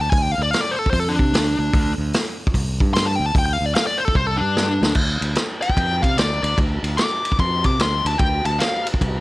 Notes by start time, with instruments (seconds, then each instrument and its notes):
0.00 fingered electric bass D2, lead electric guitar A5
0.10 fingered electric bass D2, lead electric guitar G#5, kick, open hi-hat
0.22 lead electric guitar G5
0.32 lead electric guitar F5
0.38 fingered electric bass D2
0.43 lead electric guitar D5
0.51 lead electric guitar F5, snare, open hi-hat
0.61 lead electric guitar D5
0.71 lead electric guitar C5
0.79 lead electric guitar A4
0.86 kick
0.91 fingered electric bass F2, lead electric guitar C5, kick, open hi-hat
1.00 lead electric guitar A4
1.09 lead electric guitar D4
1.19 fingered electric bass C3, kick
1.32 fingered electric bass D2, snare, open hi-hat
1.59 fingered electric bass D2
1.74 fingered electric bass D2, kick, open hi-hat
1.98 fingered electric bass D2
2.13 snare, open hi-hat
2.47 kick
2.54 fingered electric bass C2, kick, open hi-hat
2.80 fingered electric bass G2, kick
2.94 lead electric guitar C6, snare, open hi-hat
3.06 lead electric guitar A5
3.16 fingered electric bass D2, lead electric guitar G5
3.26 lead electric guitar A5
3.35 fingered electric bass D2, lead electric guitar G5, kick, open hi-hat
3.46 lead electric guitar G5
3.53 lead electric guitar F5
3.61 fingered electric bass D2
3.66 lead electric guitar D5
3.75 lead electric guitar F5, snare, open hi-hat
3.87 lead electric guitar D5
3.98 lead electric guitar C5
4.05 lead electric guitar A4, kick
4.15 fingered electric bass C2, lead electric guitar C5, kick
4.27 lead electric guitar A4
4.37 fingered electric bass G2, lead electric guitar D4
4.57 snare
4.81 fingered electric bass D2, snare
4.95 fingered electric bass D2, kick, crash
5.21 fingered electric bass D2, ride
5.35 snare, ride
5.62 lead electric guitar G5, ride
5.70 kick
5.77 fingered electric bass F2, kick, ride
6.02 fingered electric bass C3, lead electric guitar F5, kick, ride
6.17 fingered electric bass D2, lead electric guitar D5, snare, ride
6.43 fingered electric bass D2, lead electric guitar D5, ride
6.58 fingered electric bass D2, kick, ride
6.83 fingered electric bass D2, ride
6.97 lead electric guitar D6, snare, ride
7.25 ride
7.32 kick
7.39 fingered electric bass F2, lead electric guitar C6, kick, ride
7.64 fingered electric bass C3, lead electric guitar D6, kick, ride
7.79 fingered electric bass D2, lead electric guitar C6, snare, ride
8.05 fingered electric bass D2, lead electric guitar A5, ride
8.19 fingered electric bass D2, lead electric guitar G5, kick, ride
8.45 fingered electric bass D2, lead electric guitar A5, ride
8.59 lead electric guitar F5, snare, ride
8.87 ride
8.94 kick
9.01 fingered electric bass C2, kick, ride